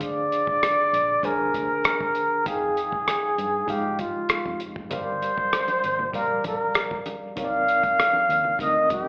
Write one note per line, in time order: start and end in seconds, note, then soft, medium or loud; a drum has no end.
0.00 0.29 D2 medium
0.00 0.82 D3 medium
0.00 0.82 D4 medium
0.00 0.83 G#4 medium
0.00 0.83 C5 medium
0.00 1.27 D5 loud
0.00 0.84 F5 medium
0.00 kick loud
0.00 closed hi-hat medium
0.32 closed hi-hat medium
0.47 muted fingered electric bass stroke soft
0.47 kick medium
0.63 cross-stick medium
0.63 closed hi-hat medium
0.93 1.17 A#1 medium
0.93 closed hi-hat medium
1.22 1.47 C2 medium
1.22 2.36 D3 medium
1.22 2.36 D4 medium
1.22 2.36 G#4 medium
1.22 2.49 A#4 medium
1.22 2.37 C5 medium
1.22 2.37 G#5 medium
1.22 kick medium
1.22 closed hi-hat medium
1.54 1.66 D2 medium
1.54 kick medium
1.54 closed hi-hat medium
1.84 cross-stick loud
1.84 closed hi-hat medium
2.01 kick medium
2.15 closed hi-hat medium
2.44 2.82 F2 medium
2.44 3.58 F3 medium
2.44 3.58 D#4 medium
2.44 3.59 G#4 medium
2.44 3.72 G#4 medium
2.44 3.59 F5 medium
2.44 3.59 G5 medium
2.44 kick loud
2.44 closed hi-hat medium
2.77 closed hi-hat medium
2.92 muted fingered electric bass stroke soft
2.92 kick medium
3.08 cross-stick medium
3.08 closed hi-hat medium
3.38 3.62 G2 medium
3.38 closed hi-hat medium
3.67 3.99 G#2 medium
3.67 4.80 F3 medium
3.67 4.81 G#3 medium
3.67 4.81 D#4 medium
3.67 4.81 G4 medium
3.67 4.02 G4 medium
3.67 4.82 F5 medium
3.67 kick medium
3.67 closed hi-hat medium
3.99 4.11 G2 medium
3.99 4.61 F4 medium
3.99 kick medium
3.99 closed hi-hat medium
4.29 muted fingered electric bass stroke soft
4.29 cross-stick medium
4.29 closed hi-hat medium
4.46 4.58 F2 medium
4.46 kick medium
4.60 closed hi-hat medium
4.76 4.88 F1 medium
4.76 kick medium
4.90 5.27 G1 medium
4.90 6.03 G3 medium
4.90 6.04 G4 medium
4.90 6.04 A#4 medium
4.90 6.10 C5 loud
4.90 6.04 D5 medium
4.90 6.05 F5 medium
4.90 kick medium
4.90 closed hi-hat medium
4.90 muted conga soft
4.90 low conga medium
5.22 closed hi-hat medium
5.22 muted conga soft
5.38 muted fingered electric bass stroke soft
5.38 kick medium
5.53 cross-stick medium
5.53 closed hi-hat medium
5.68 closed hi-hat soft
5.68 high conga medium
5.83 6.07 G#1 medium
5.83 closed hi-hat medium
5.83 muted conga soft
5.99 low conga medium
6.12 6.37 A#1 medium
6.12 7.26 G3 medium
6.12 7.26 G4 medium
6.12 7.27 A#4 medium
6.12 7.27 D5 medium
6.12 7.27 F5 medium
6.12 kick medium
6.12 closed hi-hat medium
6.12 muted conga soft
6.16 6.44 A#4 medium
6.44 6.57 A#1 medium
6.44 7.03 A#4 medium
6.44 kick medium
6.44 closed hi-hat medium
6.44 muted conga soft
6.44 high conga medium
6.75 cross-stick loud
6.75 closed hi-hat medium
6.75 muted conga soft
6.91 kick medium
7.06 closed hi-hat medium
7.06 muted conga soft
7.06 high conga medium
7.35 7.72 C2 medium
7.35 8.49 C3 medium
7.35 8.49 C4 medium
7.35 8.49 D#4 medium
7.35 8.49 A#4 medium
7.35 7.44 C#5 medium
7.35 8.57 F5 loud
7.35 kick loud
7.35 closed hi-hat medium
7.35 muted conga soft
7.35 low conga medium
7.45 8.53 D5 medium
7.68 closed hi-hat medium
7.83 muted fingered electric bass stroke soft
7.83 kick medium
7.83 closed hi-hat soft
7.98 cross-stick medium
7.98 closed hi-hat medium
7.98 muted conga soft
8.13 high conga medium
8.28 8.53 D#2 medium
8.28 closed hi-hat medium
8.28 muted conga soft
8.44 low conga medium
8.58 8.83 D2 medium
8.58 9.08 C3 medium
8.58 9.08 C4 medium
8.58 9.08 D#4 medium
8.58 9.08 A#4 medium
8.58 8.89 D#5 medium
8.58 9.08 D#5 medium
8.58 kick medium
8.58 closed hi-hat medium
8.89 9.02 C2 medium
8.89 9.08 G4 medium
8.89 kick medium
8.89 closed hi-hat medium
8.89 muted conga soft
8.89 high conga medium